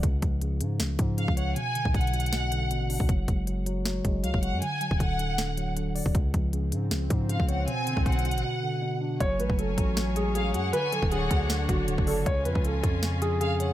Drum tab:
HH |x-----x-----x-----x-----x-----x-----x-----x-----|x-----x-----x-x-x-x-x-x-x-----x-----x-----o-----|x-----x-----x-----x-----x-----x-----x-----x-----|x-----x-----x-----x-----x-----x-----x-----o-----|
SD |------------------------o-----------------------|------------------------o-----------------------|------------------------o-----------------------|------------------------o-----------------------|
BD |o-----o-----------------------o--------o--------|---------o--o--------------------------------o--|o-----o-----------------------o--------o--------|---------o--o--------------------------------o--|

HH |x-----x-----x-----x-----x-----x-----x-----x-----|x-----x-----x-x-x-x-x-x-------------------------|x-----x-----x-----x-----x-----x-----x-----x-----|x-----x-----x-----x-----x-----x-----x-----o-----|
SD |------------------------o-----------------------|------------------------------------------------|------------------------o-----------------------|------------------------o-----------------------|
BD |o-----o-----------------------o--------o--------|---------o--o-----------------------------------|o--------o--------o-----------------------------|---------o--------o-----------o--------o--------|

HH |x-----x-----x-----x-----x-----x-----x-----x-----|
SD |------------------------o-----------------------|
BD |o--------o--------o-----------------------------|